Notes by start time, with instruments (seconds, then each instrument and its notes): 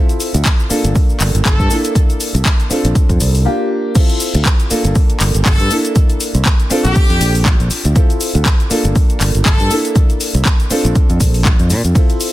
Already playing: grand piano C4 E4 F4 A4
0.09 closed hi-hat, shaker
0.20 open hi-hat, shaker
0.34 fingered electric bass D2, closed hi-hat, shaker
0.45 kick, clap, closed hi-hat, shaker
0.59 shaker
0.69 grand piano A#3 D4 F4 A4, muted fingered electric bass stroke, open hi-hat, shaker
0.84 fingered electric bass G1, closed hi-hat, shaker
0.95 kick, open hi-hat, shaker
1.09 shaker
1.20 fingered electric bass G1, clap, open hi-hat, shaker
1.35 fingered electric bass G1, closed hi-hat, shaker
1.45 fingered electric bass G1, trumpet section A4, kick, clap, closed hi-hat, shaker
1.59 fingered electric bass G2, kick, shaker
1.70 grand piano A#3 D4 E4 A4, open hi-hat, shaker
1.85 closed hi-hat, shaker
1.95 kick, closed hi-hat, shaker
2.10 closed hi-hat, shaker
2.20 open hi-hat, shaker
2.34 fingered electric bass C2, closed hi-hat, shaker
2.45 kick, clap, closed hi-hat, shaker
2.60 closed hi-hat, shaker
2.70 grand piano C4 D4 F4 A4, muted fingered electric bass stroke, open hi-hat, shaker
2.85 fingered electric bass A#1, closed hi-hat, shaker
2.95 kick, closed hi-hat, shaker
3.09 fingered electric bass F2, kick, closed hi-hat, shaker
3.20 fingered electric bass C2, open hi-hat, shaker
3.35 open hi-hat, shaker
3.45 grand piano A#3 D4 F4 G4
3.95 grand piano C4 E4 F4 A4, kick, closed hi-hat, crash, shaker
4.09 closed hi-hat, shaker
4.20 open hi-hat, shaker
4.34 fingered electric bass D2, closed hi-hat, shaker
4.45 kick, clap, closed hi-hat, shaker
4.60 closed hi-hat, shaker
4.70 grand piano A#3 D4 F4 A4, muted fingered electric bass stroke, open hi-hat, shaker
4.85 fingered electric bass G1, closed hi-hat, shaker
4.95 kick, open hi-hat, shaker
5.10 closed hi-hat, shaker
5.20 fingered electric bass G1, clap, open hi-hat, shaker
5.35 fingered electric bass G1, closed hi-hat, shaker
5.45 trumpet section A4, kick, clap, closed hi-hat, shaker
5.60 fingered electric bass G2, closed hi-hat, shaker
5.70 grand piano A#3 D4 E4 A4, open hi-hat, shaker
5.85 closed hi-hat, shaker
5.96 kick, closed hi-hat, shaker
6.10 closed hi-hat, shaker
6.20 open hi-hat, shaker
6.35 fingered electric bass C2, closed hi-hat, shaker
6.45 kick, clap, closed hi-hat, shaker
6.60 closed hi-hat, shaker
6.70 grand piano C4 D4 F4 A4, muted fingered electric bass stroke, open hi-hat, shaker
6.85 fingered electric bass A#1, trumpet section G4, closed hi-hat, shaker
6.96 kick, closed hi-hat, shaker
7.10 fingered electric bass F2, closed hi-hat, shaker
7.21 fingered electric bass A#1, open hi-hat, shaker
7.35 open hi-hat, shaker
7.46 kick, clap, closed hi-hat, shaker
7.60 fingered electric bass A#1, closed hi-hat, shaker
7.71 muted fingered electric bass stroke, open hi-hat, shaker
7.85 fingered electric bass D2, closed hi-hat, shaker
7.95 grand piano C4 E4 F4 A4, kick, closed hi-hat, shaker
8.10 closed hi-hat, shaker
8.21 open hi-hat, shaker
8.35 fingered electric bass D2, closed hi-hat, shaker
8.46 kick, clap, closed hi-hat, shaker
8.60 closed hi-hat, shaker
8.70 grand piano A#3 D4 F4 A4, muted fingered electric bass stroke, open hi-hat, shaker
8.85 fingered electric bass G1, closed hi-hat, shaker
8.96 kick, open hi-hat, shaker
9.10 closed hi-hat, shaker
9.20 fingered electric bass G1, clap, open hi-hat, shaker
9.35 fingered electric bass G1, closed hi-hat, shaker
9.45 fingered electric bass G1, trumpet section A4, kick, clap, closed hi-hat, shaker
9.60 fingered electric bass G2, closed hi-hat, shaker
9.70 grand piano A#3 D4 E4 A4, open hi-hat, shaker
9.85 closed hi-hat, shaker
9.96 kick, closed hi-hat, shaker
10.10 closed hi-hat, shaker
10.21 open hi-hat, shaker
10.35 fingered electric bass C2, closed hi-hat, shaker
10.45 kick, clap, closed hi-hat, shaker
10.60 closed hi-hat, shaker
10.70 grand piano C4 D4 F4 A4, muted fingered electric bass stroke, open hi-hat, shaker
10.85 fingered electric bass A#1, closed hi-hat, shaker
10.95 kick, closed hi-hat, shaker
11.10 fingered electric bass F2, closed hi-hat, shaker
11.20 fingered electric bass A#1, kick, open hi-hat, shaker
11.34 open hi-hat, shaker
11.45 kick, clap, closed hi-hat, shaker
11.59 fingered electric bass F2, closed hi-hat, shaker
11.70 fingered electric bass A#2, open hi-hat, shaker
11.84 fingered electric bass F2, closed hi-hat, shaker
11.95 grand piano C4 E4 F4 A4, kick, closed hi-hat, ride, shaker
12.10 closed hi-hat, shaker
12.21 open hi-hat, ride, shaker